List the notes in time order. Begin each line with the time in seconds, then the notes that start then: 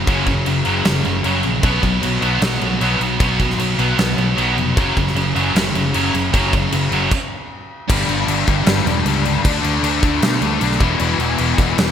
0.07 F#1 F#2 C#3 F#3, kick, crash
0.27 F#2 C#3, kick, crash
0.45 F#1 F#2 C#3, crash
0.65 F#1 F#2 C#3 F#3, crash
0.85 F#1 F#2 C#3 F#3, snare, crash
1.05 F#1 F#2 C#3, crash
1.23 F#1 F#2 C#3 F#3, crash
1.43 A#1 F#2 C#3, crash
1.63 B1 B2 F#3 B3, kick, crash
1.83 B1 B2 F#3, kick, crash
2.02 B1 B2 F#3, crash
2.21 B1 B2 F#3 B3, crash
2.40 B1 B2 F#3 B3, snare, crash
2.61 B1 B2 F#3, crash
2.81 B1 B2 F#3 B3, crash
3.00 B1 B2 F#3, crash
3.19 B1 B2 F#3 B3, kick, crash
3.39 B2 F#3, kick, crash
3.50 snare
3.58 B1 B2 F#3, crash
3.78 B1 B2 F#3 B3, crash
3.97 B1 B2 F#3 B3, snare, crash
4.18 B1 B2 F#3, crash
4.37 B1 B2 F#3 B3, crash
4.57 F1 B2 F#3, crash
4.76 F#1 F#2 C#3 F#3, kick, crash
4.96 F#1 F#2 C#3, kick, crash
5.07 snare
5.15 F#1 F#2 C#3, crash
5.35 F#1 F#2 C#3 F#3, crash
5.55 F#1 F#2 C#3 F#3, snare, crash
5.74 F#1 F#2 C#3, crash
5.94 F#1 F#2 C#3 F#3, crash
6.14 F#1 F#2 C#3, crash
6.33 F#1 F#2 C#3 F#3, kick, crash
6.53 F#2 C#3, kick, crash
6.72 F#1 F#2 C#3, crash
6.91 F#1 F#2 C#3 F#3, crash
7.11 kick, crash
7.89 G1 G2 D3 G3, kick, crash
8.08 G1 G2 D3 G3, crash
8.27 G1 G2 D3 G3, crash
8.47 G1 G2 D3 G3, kick, crash
8.66 G1 G2 D3 G3, snare, crash
8.85 E1 G2 D3 G3, crash
9.05 C#2 G2 D3 G3, crash
9.25 G2 D3 G3, crash
9.44 D2 D3 A3 D4, kick, crash
9.63 D2 D3 A3 D4, crash
9.82 D2 D3 A3 D4, crash
10.02 D2 D3 A3 D4, kick, crash
10.22 B2 D3 A3 D4, snare, crash
10.41 D2 D3 A3 D4, crash
10.60 B1 D3 A3 D4, crash
10.72 snare
10.80 E1 E2 B2 E3, kick, crash
10.99 E1 E2 B2 E3, crash
11.18 E1 E2 B2 E3, crash
11.38 E1 E2 B2 E3, crash
11.58 E1 E2 B2 E3, kick, crash
11.78 E1 E2 B2 E3, snare, crash